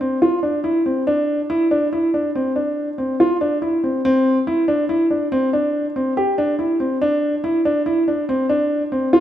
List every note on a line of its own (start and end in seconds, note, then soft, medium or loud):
0.01 0.17 C4 medium
0.22 0.38 F4 medium
0.43 0.59 D4 medium
0.64 0.80 E4 medium
0.86 1.02 C4 medium
1.07 1.39 D4 medium
1.50 1.66 E4 medium
1.71 1.87 D4 medium
1.93 2.08 E4 medium
2.14 2.30 D4 medium
2.35 2.51 C4 medium
2.56 2.87 D4 medium
2.98 3.14 C4 medium
3.20 3.36 F4 medium
3.41 3.57 D4 medium
3.62 3.78 E4 medium
3.84 3.99 C4 medium
4.05 4.36 C4 loud
4.47 4.63 E4 medium
4.68 4.84 D4 medium
4.89 5.05 E4 medium
5.11 5.26 D4 medium
5.32 5.48 C4 medium
5.53 5.85 D4 medium
5.96 6.12 C4 medium
6.17 6.33 G4 medium
6.38 6.54 D4 medium
6.59 6.75 E4 medium
6.80 6.96 C4 medium
7.02 7.33 D4 loud
7.44 7.60 E4 medium
7.65 7.81 D4 medium
7.86 8.02 E4 medium
8.08 8.23 D4 medium
8.29 8.45 C4 medium
8.49 8.81 D4 medium
8.92 9.08 C4 medium
9.13 9.20 F4 medium